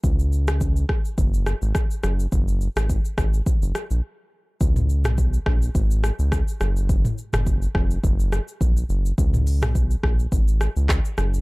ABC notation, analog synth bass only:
X:1
M:4/4
L:1/16
Q:"Swing 16ths" 1/4=105
K:Dbmix
V:1 name="Analog synth bass" clef=bass
D,,6 z2 G,,,3 A,,, z2 G,,,2 | G,,,3 A,,,2 z A,,,2 z G,,, z B,,, z4 | D,,3 C,,3 B,,,2 A,,,3 D,,2 z G,,,2- | G,,,2 z G,,,3 F,,,2 G,,,3 z B,,,2 G,,,2 |
D,,3 C,,3 B,,,2 A,,,3 D,,2 z G,,,2 |]